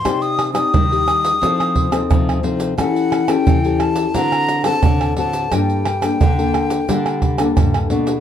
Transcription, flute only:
X:1
M:4/4
L:1/16
Q:1/4=88
K:Gm
V:1 name="Flute"
c' e'2 e'8- e'3 z2 | ^f3 g3 a2 b3 a3 a2 | g12 z4 |]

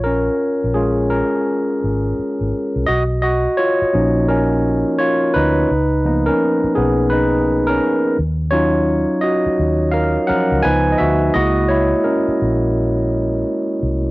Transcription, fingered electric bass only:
X:1
M:4/4
L:1/16
Q:"Swing 16ths" 1/4=85
K:Cblyd
V:1 name="Fingered electric bass" clef=bass
B,,,2 z B,,,4 z3 A,,,2 z A,,, z =C,, | =B,,,4 z2 ^A,,,4- A,,, z3 =D,,2 | D,,4 z2 C,,6 z2 E,,2- | E,,4 z2 E,,4 z D,, D,,2 =D,,2 |
D,,4 z2 B,,,6 z2 =C,,2 |]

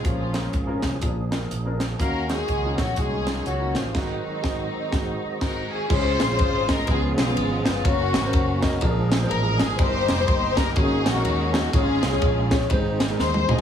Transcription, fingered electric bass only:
X:1
M:4/4
L:1/8
Q:"Swing" 1/4=123
K:Db
V:1 name="Fingered electric bass" clef=bass
B,,,2 A,,, C,, B,,,2 B,,,2 | E,,2 D,, B,,, C,,2 D,, =A,,, | A,,, z A,,, z A,,, z A,,, z | D,, B,,, A,,,2 D,, _C,, A,,, =G,,, |
G,,, A,,, G,,,2 B,,,2 =A,,, _A,,, | =G,,, F,,, G,,,2 A,,, B,,, E,,2 | A,,, C,, B,,,2 A,,,2 E,, =D,, |]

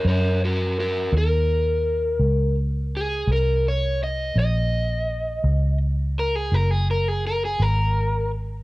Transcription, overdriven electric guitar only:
X:1
M:12/8
L:1/16
Q:3/8=56
K:Ebdor
V:1 name="Overdriven electric guitar"
[Bd]2 [GB]2 [GB]2 B8 z2 A2 B2 d2 e2 | e8 z2 B A B A B A B A B4 z2 |]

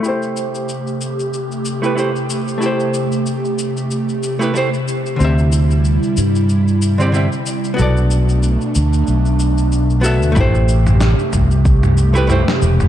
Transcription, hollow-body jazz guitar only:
X:1
M:4/4
L:1/16
Q:"Swing 16ths" 1/4=93
K:Ador
V:1 name="Hollow-body jazz guitar"
[A,EGc]8- [A,EGc]3 [A,EGB] [A,EGc] z3 | [A,EGc]8- [A,EGc]3 [A,EGB] [A,EGc] z3 | [D,CGe]8- [D,CGe]3 [D,CGd] [D,CGe] z3 | [B,FAd]8- [B,FAd]3 z3 [B,FAe]2 |
[A,EGc]8- [A,EGc]3 [A,EGB] [A,EGc] z3 |]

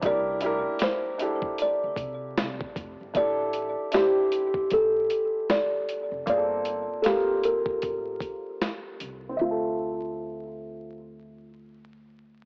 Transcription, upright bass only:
X:1
M:4/4
L:1/16
Q:"Swing 16ths" 1/4=77
K:Dm
V:1 name="Upright bass" clef=bass
C,,3 z6 D,, C,2 C,, z F,,, G,,, | A,,,3 z4 z A,,,2 z4 z F,,, | G,,,3 z4 z A,,,2 z4 C,,2 | D,,16 |]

